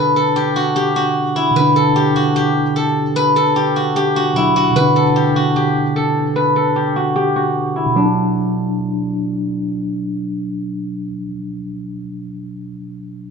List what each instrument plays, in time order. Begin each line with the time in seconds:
Already playing: tine electric piano B2 D3 D4, guzheng E4 G4 A4 B4
0.16 guzheng A4
0.36 guzheng G4
0.56 guzheng F#4
0.76 guzheng G4
0.96 guzheng F#4
1.36 guzheng E4
1.51 tine electric piano B2
1.56 tine electric piano D3, guzheng B4
1.61 tine electric piano D4
1.76 guzheng A4
1.96 guzheng G4
2.16 guzheng F#4
2.36 guzheng G4
2.76 guzheng A4
3.16 guzheng B4
3.36 guzheng A4
3.56 guzheng G4
3.76 guzheng F#4
3.96 guzheng G4
4.16 guzheng F#4
4.34 tine electric piano B2 F#3, guzheng E4
4.38 tine electric piano D4
4.56 guzheng F#4
4.71 tine electric piano B2
4.76 tine electric piano D3, guzheng B4
4.81 tine electric piano D4
4.96 guzheng A4
5.16 guzheng G4
5.36 guzheng F#4
5.56 guzheng G4
5.96 guzheng A4
6.36 guzheng B4
6.56 guzheng A4
6.76 guzheng G4
6.96 guzheng F#4
7.16 guzheng G4
7.36 guzheng F#4
7.76 guzheng E4
7.86 tine electric piano B2
7.96 tine electric piano F#3, guzheng D4
8.06 tine electric piano D4